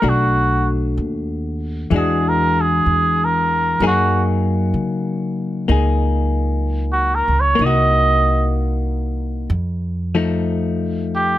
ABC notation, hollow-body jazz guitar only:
X:1
M:4/4
L:1/8
Q:"Swing" 1/4=64
K:Gblyd
V:1 name="Hollow-body jazz guitar"
[=A,=D^F]4 [=E,^G,DF]4 | [G,B,EA]4 [B,EA]4 | [B,EG]4 z [F,=A,E]3 |]